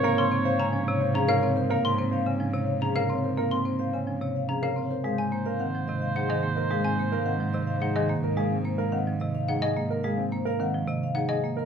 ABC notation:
X:1
M:3/4
L:1/16
Q:1/4=108
K:Abmix
V:1 name="Xylophone"
z c' z2 b z3 b f z2 | z c' z6 b f z2 | z c' z6 b f z2 | z a z6 g e z2 |
z a z6 g e z2 | z8 g e z2 | z8 g e z2 |]
V:2 name="Vibraphone"
f z c f a z d f A z d B | f z c f a z d f A z d B | f z c f a z d f A z d B | f z c f g z e f A z e B |
f z c f g z e f A z e B | f z c f g z e f A z e B | f z c f g z e f A z e B |]
V:3 name="Oboe"
d8- d3 z | z12 | z12 | c12- |
c8- c3 z | z12 | z12 |]
V:4 name="Grand piano"
B C z c C D z c D B z c | B C z c C D z2 D B z c | B C z c C D z2 D B z c | A C z B C z3 E A z B |
A C z B C z3 E A z B | A C z B C z3 E A z B | A C z B C z3 E A z B |]
V:5 name="Marimba" clef=bass
B, D, C z D, F, C, z F, D, C z | B, z C z D, F, C, z F, D, C z | B, z C z D, F, C, z F, D, C z | A, z B, z E, F, C, z F, E, B, z |
A, z B, z E, F, C, z F, E, B, z | A, z B, z E, F, C, z F, z B, z | A, z B, z E, F, C, z F, z B, z |]
V:6 name="Cello" clef=bass
A,,12- | A,,12- | A,,12 | A,,12- |
A,,12- | A,,12- | A,,12 |]